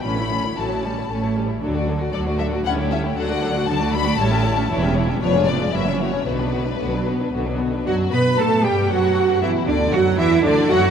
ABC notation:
X:1
M:3/4
L:1/16
Q:1/4=116
K:D
V:1 name="Violin section"
b4 a6 z2 | z4 d2 e2 f2 e2 | f4 a2 b2 a4 | [K:Bm] z4 c2 d2 e2 c2 |
B8 z4 | F2 B2 A2 G2 F4 | E2 D2 F2 E2 D2 F2 |]
V:2 name="Violin section"
[CA] [Ec] [CA] [Ec] [CA] [Ec] [CA] [Ec] [CA] [Ec] [CA] [Ec] | A [Fd] A [Fd] A [Fd] A [Fd] [EA] [Gc] [EA] [Gc] | A [Fd] A [Fd] A [Fd] A [Fd] [Ac] [Ge] [Ac] [Ge] | [K:Bm] [Ec] [Ge] [Ec] [Ge] [D_c] [=F_A] [Dc] [FA] [E^F] [^CE] [EF] [CE] |
[B,F] [DB] [B,F] [DB] [B,F] [DB] [B,F] [DB] [B,F] [DB] [B,F] [DB] | f2 b2 a2 g2 f4 | e2 d2 f2 e2 d2 f2 |]
V:3 name="Viola section"
[E,C] [A,E] [E,C] [A,E] F,2 G,2 A,2 G,2 | [F,D] [A,F] [F,D] [A,F] [F,D] [A,F] [F,D] [A,F] [G,C] [A,E] [G,C] [A,E] | [F,D] [A,F] [F,D] [A,F] [F,D] [A,F] [F,D] [A,F] [G,E] [A,C] [G,E] [A,C] | [K:Bm] [E,E] [G,C] [E,E] [G,C] [=F,_C] [_A,D] [F,C] [A,D] [E,^A,] [^F,^C] [E,A,] [F,C] |
[D,B,] [F,D] [D,B,] [F,D] [D,B,] [F,D] [D,B,] [F,D] [D,B,] [F,D] [D,B,] [F,D] | F,2 B,2 A,2 G,2 F,4 | E,2 D,2 F,2 E,2 D,2 F,2 |]
V:4 name="Cello section" clef=bass
A,,4 A,,4 A,,4 | D,4 D,4 D,4 | D,4 D,4 A,,4 | [K:Bm] E,,4 =F,,4 ^F,,4 |
B,,4 B,,4 B,,4 | F2 B2 A2 G2 F4 | E2 D2 F2 E2 D2 F2 |]
V:5 name="Double bass section" clef=bass
A,,,4 A,,,4 A,,,4 | D,,4 D,,4 D,,4 | D,,4 D,,4 A,,,4 | [K:Bm] E,,,4 =F,,,4 ^F,,,4 |
B,,,4 B,,,4 B,,,4 | F,,2 B,,2 A,,2 G,,2 F,,4 | E,,2 D,,2 F,,2 E,,2 D,,2 F,,2 |]